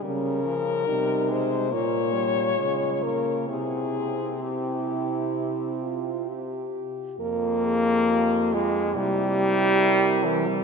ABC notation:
X:1
M:4/4
L:1/16
Q:1/4=68
K:Fm
V:1 name="French horn"
B6 c2 d6 B2 | A4 G8 z4 | z8 G4 B4 |]
V:2 name="French horn"
D4 E4 F8 | =E4 E6 F2 G4 | B2 A2 G2 F2 =E8 |]
V:3 name="French horn" clef=bass
G,2 F,2 G,2 A,2 B,2 G,2 A,2 B,2 | C12- C2 z2 | B,6 A,2 G,6 =E, G, |]
V:4 name="French horn" clef=bass
D,4 C,4 B,,4 D,4 | C,12- C,2 z2 | F,,8 C,8 |]